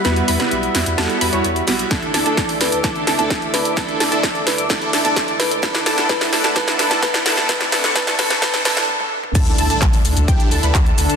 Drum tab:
CC |----------------|----------------|----------------|----------------|
HH |xxoxxxoxxxoxxxox|xxoxxooxxxoxxxox|xxoxxxoxxxoxxxox|xxoxxooxxxoxxxox|
SH |----------------|----------------|----------------|----------------|
CP |----------------|----------------|----------------|----------------|
SD |o--o--o-o-----o-|o-o-o-o-o-o-o-o-|o-o-o-o-o-o-o-o-|oooooooooooooooo|
T1 |----------------|----------------|----------------|----------------|
T2 |----------------|----------------|----------------|----------------|
BD |----------------|o---o---o---o---|o---o---o---o---|o---o---o---o---|

CC |----------------|x---------------|
HH |xxoxxxoxxxox----|xxoxxooxxxoxxxox|
SH |----------------|xxxxxxxxxxxxx-xx|
CP |----------------|----x-------x---|
SD |oooooooooooo----|----------------|
T1 |------------oo--|----------------|
T2 |---------------o|----------------|
BD |o---o---o-------|o---o---o---o---|